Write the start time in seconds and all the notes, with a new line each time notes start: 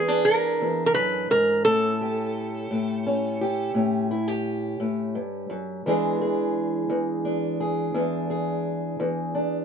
Already playing: E2 E3 G#3 G#4
0.08 D4
0.25 A#4
0.61 E2
0.86 A#4
0.94 F#2 B4
1.30 G#2 A#4
1.65 A2 C#4 A4
2.01 G4
2.71 A2
3.07 C#4
3.41 G4
3.74 A2 C#4
4.11 E4
4.28 G4
4.80 A2
5.15 G2
5.50 F#2
5.86 E2 E3 G#3 D4 G#4
6.21 G#4
6.90 E2
7.25 D4
7.60 G#4
7.94 E2 D4
8.30 G#4
9.00 E2
9.35 D4